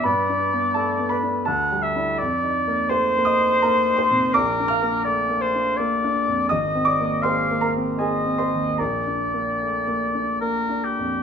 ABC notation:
X:1
M:3/4
L:1/8
Q:1/4=83
K:Dmix
V:1 name="Oboe"
d3 z f e | [K:Bb] d2 c4 | B2 d c d2 | e2 f z e2 |
d4 B G |]
V:2 name="Grand piano"
[Bb]2 [Aa] [Bb] [Aa] z | [K:Bb] z2 [cc'] [ee'] [Bb] [cc'] | [dd'] [ff']4 z | [ee'] [dd'] [cc'] [Bb] [_A_a] [cc'] |
[Bb]4 z2 |]
V:3 name="Grand piano"
(3G,, D B, (3A, B, D (3D,, G, [DE] | [K:Bb] (3F,, E B, (3A, B, E (3B, E C, | (3B,,, D B, (3A, B, D (3B, D F,, | (3_A,,, C B, (3_A, B, C (3B, C E,, |
(3B,,, D B, (3A, B, D (3B, D F,, |]